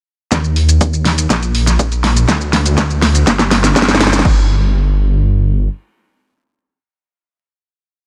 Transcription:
0.32 D#2, kick, snare, closed hi-hat, shaker
0.44 shaker
0.56 open hi-hat
0.69 closed hi-hat, shaker
0.81 kick, closed hi-hat, shaker
0.93 shaker
1.05 snare, open hi-hat
1.18 closed hi-hat, shaker
1.30 A#1, kick, snare, closed hi-hat, shaker
1.43 closed hi-hat, shaker
1.55 open hi-hat
1.67 snare, closed hi-hat, shaker
1.79 kick, closed hi-hat, shaker
1.92 closed hi-hat, shaker
2.04 snare, open hi-hat
2.16 closed hi-hat, shaker
2.28 D2, kick, snare, closed hi-hat, shaker
2.41 shaker
2.53 snare, open hi-hat
2.66 closed hi-hat, shaker
2.78 kick, snare, closed hi-hat, shaker
2.90 shaker
3.02 snare, open hi-hat
3.15 closed hi-hat, shaker
3.27 G1, kick, snare, closed hi-hat, shaker
3.39 snare, closed hi-hat, shaker
3.51 snare, open hi-hat
3.64 snare, closed hi-hat, shaker
3.76 kick, snare, closed hi-hat, shaker
3.82 snare
3.88 snare, closed hi-hat, shaker
3.95 snare
4.01 snare, open hi-hat
4.07 snare
4.13 snare, closed hi-hat, shaker
4.19 snare
4.25 G1, kick, crash

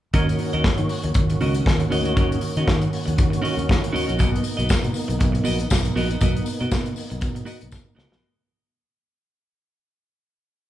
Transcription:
0.14 D#2 D#3 A#3 C#4 F#4 A#4 D#5, kick, closed hi-hat
0.28 muted clean electric guitar stroke, closed hi-hat
0.39 muted clean electric guitar stroke, open hi-hat
0.53 D#2 C#4 F#4 A#4 D#5, closed hi-hat
0.64 muted clean electric guitar stroke, kick, snare
0.78 D#3, muted clean electric guitar stroke, closed hi-hat
0.89 open hi-hat
1.03 D#2, muted clean electric guitar stroke, closed hi-hat
1.14 D#2, muted clean electric guitar stroke, kick, closed hi-hat
1.30 muted clean electric guitar stroke, closed hi-hat
1.41 C#2 C#4 F#4 A#4 D#5, open hi-hat
1.54 muted clean electric guitar stroke, closed hi-hat
1.66 D#2, muted clean electric guitar stroke, kick, snare
1.80 muted clean electric guitar stroke, closed hi-hat
1.90 D2 C#4 F#4 A#4 D#5, open hi-hat
2.05 C#4 F#4 A#4 D#5, closed hi-hat
2.16 D#2 C#4 F#4 A#4 D#5, kick, closed hi-hat
2.31 muted clean electric guitar stroke, closed hi-hat
2.41 muted clean electric guitar stroke, open hi-hat
2.57 D#3 C#4 F#4 A#4 D#5, closed hi-hat
2.68 D#3, muted clean electric guitar stroke, kick, snare
2.82 muted clean electric guitar stroke, closed hi-hat
2.93 open hi-hat
3.06 D#2, muted clean electric guitar stroke, closed hi-hat
3.17 D#3, muted clean electric guitar stroke, kick, closed hi-hat
3.30 muted clean electric guitar stroke, closed hi-hat
3.42 C#4 F#4 A#4 D#5, open hi-hat
3.56 D#2, muted clean electric guitar stroke, closed hi-hat
3.67 D#3, muted clean electric guitar stroke, kick, snare
3.82 muted clean electric guitar stroke, closed hi-hat
3.92 D#2 C#4 F#4 A#4 D#5, open hi-hat
4.06 A#1 C#4 F#4 A#4 D#5, closed hi-hat
4.18 B1 B3 D#4 F#4 A#4 D#5, kick, closed hi-hat, tambourine
4.32 muted clean electric guitar stroke, closed hi-hat
4.43 muted clean electric guitar stroke, open hi-hat, tambourine
4.57 B1 B3 F#4 A#4 D#5, closed hi-hat
4.69 muted clean electric guitar stroke, muted fingered electric bass stroke, kick, snare, tambourine
4.83 B2, muted clean electric guitar stroke, closed hi-hat
4.94 open hi-hat, tambourine
5.08 B1, muted clean electric guitar stroke, closed hi-hat
5.19 B1, muted clean electric guitar stroke, kick, closed hi-hat
5.32 muted clean electric guitar stroke, closed hi-hat
5.44 A#1 B3 F#4 A#4 D#5, open hi-hat, tambourine
5.59 muted clean electric guitar stroke, closed hi-hat
5.70 B1, kick, snare, tambourine
5.85 muted clean electric guitar stroke, closed hi-hat
5.96 A#1 B3 F#4 A#4 D#5, open hi-hat
6.09 muted clean electric guitar stroke, closed hi-hat
6.21 B1 B3 F#4 A#4 D#5, kick, closed hi-hat, tambourine
6.36 muted clean electric guitar stroke, closed hi-hat
6.46 muted clean electric guitar stroke, open hi-hat, tambourine
6.60 B2 B3 F#4 A#4 D#5, closed hi-hat
6.71 B2, muted clean electric guitar stroke, kick, snare, tambourine
6.85 muted clean electric guitar stroke, closed hi-hat
6.96 open hi-hat, tambourine
7.10 B1, muted clean electric guitar stroke, closed hi-hat
7.20 B2, muted clean electric guitar stroke, kick, closed hi-hat, tambourine
7.35 muted clean electric guitar stroke, closed hi-hat
7.45 B3 F#4 A#4 D#5, open hi-hat, tambourine
7.60 B1, muted clean electric guitar stroke, closed hi-hat
7.71 B2, muted clean electric guitar stroke, kick, snare, tambourine
7.85 muted clean electric guitar stroke
7.95 C#2 B3 F#4 A#4 D#5, snare
8.10 A#1 B3 F#4 A#4 D#5, snare

